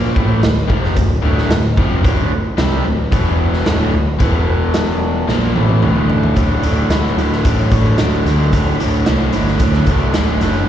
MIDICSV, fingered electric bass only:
0, 0, Header, 1, 3, 480
1, 0, Start_track
1, 0, Tempo, 539568
1, 1825, Time_signature, 4, 2, 24, 8
1, 9506, End_track
2, 0, Start_track
2, 0, Title_t, "Fingered electric bass"
2, 0, Program_c, 0, 33
2, 0, Note_on_c, 0, 34, 92
2, 126, Note_off_c, 0, 34, 0
2, 143, Note_on_c, 0, 33, 87
2, 367, Note_off_c, 0, 33, 0
2, 386, Note_on_c, 0, 26, 77
2, 609, Note_off_c, 0, 26, 0
2, 621, Note_on_c, 0, 29, 83
2, 846, Note_off_c, 0, 29, 0
2, 859, Note_on_c, 0, 26, 83
2, 1085, Note_off_c, 0, 26, 0
2, 1093, Note_on_c, 0, 26, 88
2, 1322, Note_off_c, 0, 26, 0
2, 1336, Note_on_c, 0, 26, 82
2, 1563, Note_off_c, 0, 26, 0
2, 1578, Note_on_c, 0, 29, 97
2, 1804, Note_off_c, 0, 29, 0
2, 1815, Note_on_c, 0, 26, 101
2, 2043, Note_off_c, 0, 26, 0
2, 2292, Note_on_c, 0, 36, 95
2, 2521, Note_off_c, 0, 36, 0
2, 2533, Note_on_c, 0, 26, 78
2, 2761, Note_off_c, 0, 26, 0
2, 2777, Note_on_c, 0, 28, 99
2, 3227, Note_off_c, 0, 28, 0
2, 3252, Note_on_c, 0, 26, 89
2, 3481, Note_off_c, 0, 26, 0
2, 3500, Note_on_c, 0, 26, 92
2, 3725, Note_off_c, 0, 26, 0
2, 3739, Note_on_c, 0, 28, 92
2, 4667, Note_off_c, 0, 28, 0
2, 4699, Note_on_c, 0, 34, 93
2, 4925, Note_off_c, 0, 34, 0
2, 4944, Note_on_c, 0, 33, 94
2, 5168, Note_off_c, 0, 33, 0
2, 5176, Note_on_c, 0, 26, 97
2, 5627, Note_off_c, 0, 26, 0
2, 5663, Note_on_c, 0, 26, 77
2, 5858, Note_off_c, 0, 26, 0
2, 5895, Note_on_c, 0, 26, 76
2, 6093, Note_off_c, 0, 26, 0
2, 6141, Note_on_c, 0, 26, 79
2, 6337, Note_off_c, 0, 26, 0
2, 6387, Note_on_c, 0, 26, 75
2, 6580, Note_off_c, 0, 26, 0
2, 6624, Note_on_c, 0, 33, 88
2, 6819, Note_off_c, 0, 33, 0
2, 6859, Note_on_c, 0, 33, 80
2, 7056, Note_off_c, 0, 33, 0
2, 7103, Note_on_c, 0, 26, 80
2, 7298, Note_off_c, 0, 26, 0
2, 7339, Note_on_c, 0, 38, 92
2, 7536, Note_off_c, 0, 38, 0
2, 7585, Note_on_c, 0, 26, 85
2, 7780, Note_off_c, 0, 26, 0
2, 7824, Note_on_c, 0, 26, 76
2, 8018, Note_off_c, 0, 26, 0
2, 8064, Note_on_c, 0, 36, 93
2, 8258, Note_off_c, 0, 36, 0
2, 8304, Note_on_c, 0, 31, 83
2, 8498, Note_off_c, 0, 31, 0
2, 8538, Note_on_c, 0, 38, 89
2, 8735, Note_off_c, 0, 38, 0
2, 8777, Note_on_c, 0, 36, 83
2, 8974, Note_off_c, 0, 36, 0
2, 9021, Note_on_c, 0, 26, 80
2, 9216, Note_off_c, 0, 26, 0
2, 9260, Note_on_c, 0, 30, 93
2, 9455, Note_off_c, 0, 30, 0
2, 9506, End_track
3, 0, Start_track
3, 0, Title_t, "Muted fingered electric bass strokes"
3, 2057, Note_on_c, 9, 29, 40
3, 2146, Note_off_c, 9, 29, 0
3, 9506, End_track
0, 0, End_of_file